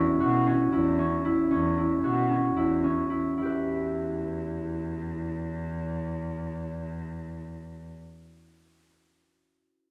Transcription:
Already playing: E2 C#4 E4 F#4
0.20 B2 F#4
0.46 C#4
0.72 E2 E4
0.98 C#4
1.25 E4
1.50 E2 C#4
1.77 E4
2.02 B2 F#4
2.30 C#4
2.56 E2 E4
2.84 C#4
3.10 E4
3.37 E2 E4
3.41 G4 B4
3.49 E5

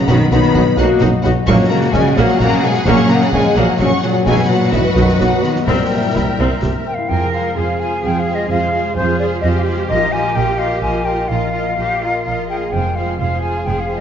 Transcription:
Already playing: F#3 B3 F#4 D#5 F#5 D#6
0.08 B1 B2 D#3 B3 D#4 F#4 B4 F#5 B5, concert bass drum, snare
0.21 B3
0.31 B1 D#3 F#3 B3 D#4 F#4 B4 F#5 B5, snare
0.43 F#4, snare
0.55 B1 D#4 F#4 B4 D#5 F#5, concert bass drum
0.66 F#4
0.77 B1 A#3 D#4 F#4 B4 F#5 F#6, snare
0.90 D#6
1.00 B1 D#4 F#4 B4 F#5, concert bass drum, snare
1.13 F#4
1.23 B1 D#4 F#4 B4 D#5 F#5, snare
1.36 F#4
1.46 A#1 A#2 F#3 A#3 C#4 F#4 G#4 F#5 C#6, concert bass drum, snare, crash
1.59 F#3
1.69 C#3 G#3 A#3 A#5
1.82 F#4
1.92 A#1 C#3 G#3 C#4 C#5 G#5, concert bass drum, snare
2.05 G#4
2.16 A#1 A#2 F#3 A#3 F#5, snare
2.28 C#6, snare
2.39 A#1 C#3 A#3 F#4 F#5 A#5, concert bass drum, snare
2.52 G#4
2.63 B2 G#3 C#5 G#5, snare
2.74 F#4, snare
2.85 A#1 A#2 F#3 A#3 C#4 C#6, concert bass drum, snare
2.98 F#3
3.09 C#3 G#3 A#3 A#5, snare
3.21 F#4, snare
3.32 A#1 C#3 G#3 C#4 C#5 G#5, concert bass drum
3.45 G#4
3.56 A#1 A#2 F#3 A#3 F#5, snare
3.68 C#6
3.79 A#1 F#3 C#4 F#4 F#5 C#6, concert bass drum, snare
3.91 G#4
4.01 A#2 F#3 C#5 F#5, snare
4.15 F#4
4.25 B1 B2 F#3 G#3 F#4 B4 F#5 G#5, concert bass drum, snare
4.38 F#3
4.48 A#2 F#3 B3 F#5
4.62 F#4
4.72 B1 G#2 E3 B3 D#5 E5, concert bass drum, snare
4.85 B4
4.95 B1 F#2 D#3 F#3 D#5 F#5, snare
5.09 D#6, snare
5.19 B1 B2 F#3 D#4 F#5, concert bass drum, snare
5.32 B4
5.42 D#3 B3 D#5 B5, snare
5.55 F#4, snare
5.67 C2 A#2 C3 G3 C4 A#4 E5 G5, concert bass drum, snare
5.80 G3
5.91 A#3
6.03 E4
6.14 C2 E4 C5, concert bass drum, snare
6.27 A#4
6.38 C2 C4 E5
6.51 C6
6.62 C2 G4 E5, concert bass drum, snare
6.75 A#4
6.86 C5 G5
6.94 E4 F5
7.09 F2 G#3 F4 G#4 A#4 C5 G5
7.24 C3
7.32 F4 G#4 C5 F5
7.41 G#3
7.56 F2 F4 G#4 C5 F5
7.72 C5
7.79 F4 G#4 C5 G#5
8.03 F2 F4 G#4 C5 G5
8.19 F4 F5
8.27 F4 G#4 C5
8.35 G#3 D#5
8.48 F2 G#3 F4 G#4 C5 F5
8.66 C3
8.73 F4 G#4 C5
8.81 G#3
8.96 F2 F4 G#4 C5
9.11 C5
9.19 F4 G#4 C5 D5
9.41 F2 F4 G4 G#4 C5 D#5
9.58 F4 F5
9.66 F4 G#4 C5
9.74 G#3
9.89 A#1 A#2 A#3 D#4 F4 A#4 D#5
10.06 F3
10.12 F4 A#4 D#5 G#5
10.22 A#3
10.36 A#1 F4 A#4 D#5 G5
10.52 D#5
10.59 F4 A#4 D#5 F5
10.67 A#4
10.82 A#1 F4 A#4 D#5 G#5
10.99 F4
11.05 F4 A#4 D#5 G5
11.14 A#3
11.28 A#1 A#2 A#3 D#4 F4 A#4 D#5 F5
11.47 F3
11.53 F4 A#4 D#5
11.62 A#3
11.77 A#1 F4 G4 A#4 D#5
11.94 D#5
12.01 F4 A#4 D#5
12.09 A#4
12.25 A#1 F4 A#4 D#5
12.42 F4
12.49 F4 G#4 A#4 D#5 G5
12.57 A#3 F5
12.72 F1 F2 G#3 C4 F4 G#4 C5 G5
12.89 C3
12.96 F4 G#4 C5 F5
13.05 G#3
13.19 F1 F4 G#4 C5 F5
13.36 C5
13.42 F4 G#4 C5 G#5
13.51 G#4
13.66 F1 F4 G#4 C5 G5
13.80 F4 F5
13.89 F4 G#4 C5
13.97 G#3 D#5

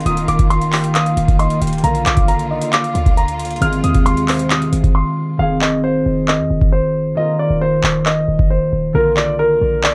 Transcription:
Already playing: D#3 C4 F4 G#4
0.01 D#3, closed hi-hat
0.05 D#1 A#3 F4 A#4 D#6, closed hi-hat
0.17 closed hi-hat
0.28 D#1 D6, closed hi-hat
0.39 kick, closed hi-hat
0.50 C6, closed hi-hat
0.61 closed hi-hat
0.73 G5, clap, open hi-hat
0.84 closed hi-hat
0.94 F5 D#6, clap, closed hi-hat
1.06 closed hi-hat
1.17 D#1, closed hi-hat
1.28 kick, closed hi-hat
1.39 D#5 C6, closed hi-hat
1.50 closed hi-hat
1.61 D#1 G5, closed hi-hat
1.67 closed hi-hat
1.73 closed hi-hat
1.78 D3, closed hi-hat
1.83 A#1 D3 A#3 F4 A#4 F5 A#5, closed hi-hat
1.95 closed hi-hat
2.06 A#1 D6, clap, closed hi-hat
2.17 kick, closed hi-hat
2.28 A#5, closed hi-hat
2.39 closed hi-hat
2.50 D#5
2.62 closed hi-hat
2.73 F5 D6, clap, closed hi-hat
2.84 closed hi-hat
2.95 D2, closed hi-hat
3.06 kick, closed hi-hat
3.17 A#5, closed hi-hat
3.28 closed hi-hat
3.39 closed hi-hat
3.45 closed hi-hat
3.51 closed hi-hat
3.56 D#3, closed hi-hat
3.61 G#1 C3 G#3 C4 F4 G#4 F6, closed hi-hat
3.73 closed hi-hat
3.84 D#2 D#6, closed hi-hat
3.94 kick, closed hi-hat
4.06 C6, closed hi-hat
4.17 closed hi-hat
4.28 C5, clap, open hi-hat
4.39 closed hi-hat
4.50 D#6, clap, closed hi-hat
4.62 closed hi-hat
4.73 G#1, closed hi-hat
4.84 kick, closed hi-hat
4.95 C6
5.37 F1 D#3 C4 F4 G#4 F5
5.61 D#5, clap
5.84 C5
6.06 F1
6.28 D#5, clap
6.39 F2
6.50 F1
6.62 kick
6.72 C5
7.15 D#3 A#3 F4 A#4 D#5
7.39 D5
7.50 D#1
7.61 C5
7.84 D#1, clap
8.06 D#5, clap
8.28 D#1
8.39 kick
8.50 C5
8.72 D#1
8.93 A#1 D3 A#3 F4 A#4
9.17 D5, clap
9.39 A#4
9.61 A#1
9.84 D5, clap

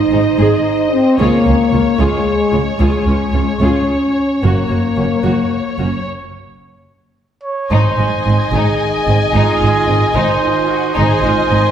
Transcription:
Already playing: D#4 C5 D#5
0.11 G#1 G#2 D#4 G#4
0.38 G#1 G#2 G#4
0.91 C4
1.18 C#2 A#3 F4 G#4 C#5
1.45 C#2 C#4 F4
1.71 C#2 F4
1.99 C#2 G#3 F4 G#4
2.52 C#2 F4
2.79 C#2 G#3 F4 G#4
3.06 C#2 C#4 F4
3.34 C#2 F4
3.60 C#2 C#4 F4 G#4
4.42 F#1 F#2 A#3 F#4
4.70 F#1 F#2 A#3 F#4
4.96 F#1 F#2 C#4 F#4
5.23 F#1 F#2 F#4
5.79 F#1 F#2 C#4 F#4
7.43 C#5
7.70 G#1 G#2 D#3 D#4 C5 D#5 G#5
7.98 G#1 G#2 G#3
8.26 G#1 G#2 C4
8.52 G#1 G#2 D#4 G#4
9.07 G#1 G#2 C4
9.33 G#1 G#2 D#4 F4 G#4
9.62 G#1 G#2 G#3
9.88 G#1 G#2 C4
10.15 G#1 G#2 D#4 C5
10.42 F4
10.69 F#4
10.95 G#1 G#2 D#3 D#4 G#4 C5 D#5 G#5
11.22 G#1 G#2 G#3 F4
11.50 G#1 G#2 C4 D#4

